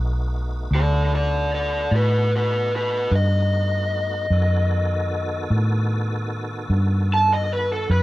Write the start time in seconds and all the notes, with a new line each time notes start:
Already playing: B1 A3 B3 D#4 F#4
0.71 D2 A4
0.75 D5
1.15 A4 D5
1.54 A4 D5
1.91 A2 F#4
1.96 B4
2.36 F#4 B4
2.75 F#4 B4
3.11 G2
3.15 D#5
4.30 F#2 D#3 B3 F#4 A4
5.50 A2
6.70 G2
7.14 A5
7.33 D#5
7.53 B4
7.73 A4
7.90 F#2 B4